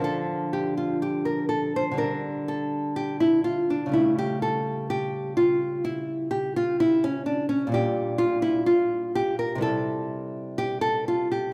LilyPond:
\new Staff \with { instrumentName = "Nylon-string guitar" } { \time 4/4 \key a \phrygian \tempo 4 = 62 << { a'8 g'16 f'16 g'16 bes'16 a'16 c''16 bes'8 a'8 g'16 e'16 f'16 d'16 | e'16 g'16 a'8 g'8 f'8 e'8 g'16 f'16 e'16 cis'16 d'16 cis'16 | \key c \mixolydian g'8 f'16 e'16 f'8 g'16 bes'16 a'4 g'16 a'16 f'16 g'16 | } \\ { <d f d'>2 <d g d'>2 | <cis g a>1 | <bes, g d'>2 <c g e'>2 | } >> }